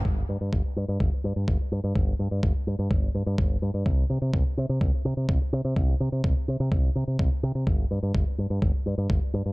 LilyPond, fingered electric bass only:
\new Staff \with { instrumentName = "Fingered electric bass" } { \clef bass \time 4/4 \key c \dorian \tempo 4 = 126 g,,16 r16 g,16 g,16 g,,16 r16 g,16 g,16 g,,16 r16 g,16 g,16 g,,16 r16 g,16 g,16 | g,,16 r16 g,16 g,16 g,,16 r16 g,16 g,16 g,,16 r16 g,16 g,16 g,,16 r16 g,16 g,16 | c,16 r16 c16 c16 c,16 r16 c16 c16 c,16 r16 c16 c16 c,16 r16 c16 c16 | c,16 r16 c16 c16 c,16 r16 c16 c16 c,16 r16 c16 c16 c,16 r16 c16 c16 |
g,,16 r16 g,16 g,16 g,,16 r16 g,16 g,16 g,,16 r16 g,16 g,16 g,,16 r16 g,16 g,16 | }